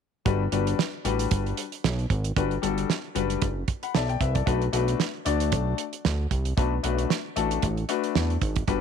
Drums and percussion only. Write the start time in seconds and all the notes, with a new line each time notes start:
0.26 kick, closed hi-hat
0.52 closed hi-hat
0.67 closed hi-hat
0.79 snare
1.05 closed hi-hat
1.19 closed hi-hat
1.31 kick, closed hi-hat
1.46 closed hi-hat
1.57 closed hi-hat
1.72 closed hi-hat
1.84 snare
1.99 closed hi-hat
2.10 kick, closed hi-hat
2.24 closed hi-hat
2.37 kick, closed hi-hat
2.51 closed hi-hat
2.63 closed hi-hat
2.78 closed hi-hat
2.90 snare
3.16 closed hi-hat
3.30 closed hi-hat
3.42 kick, closed hi-hat
3.68 kick, closed hi-hat
3.83 closed hi-hat
3.95 snare
4.09 closed hi-hat
4.21 kick, closed hi-hat
4.35 kick, closed hi-hat
4.47 kick, closed hi-hat
4.61 closed hi-hat
4.73 closed hi-hat
4.88 closed hi-hat
5.00 snare
5.26 closed hi-hat
5.40 closed hi-hat
5.52 kick, closed hi-hat
5.78 closed hi-hat
5.93 closed hi-hat
6.05 snare
6.31 kick, closed hi-hat
6.45 closed hi-hat
6.58 kick, closed hi-hat
6.84 closed hi-hat
6.98 closed hi-hat
7.10 snare
7.36 closed hi-hat
7.51 closed hi-hat
7.62 kick, closed hi-hat
7.77 closed hi-hat
7.89 closed hi-hat
8.04 closed hi-hat
8.15 snare
8.30 closed hi-hat
8.41 kick, closed hi-hat
8.56 kick, closed hi-hat
8.67 kick, closed hi-hat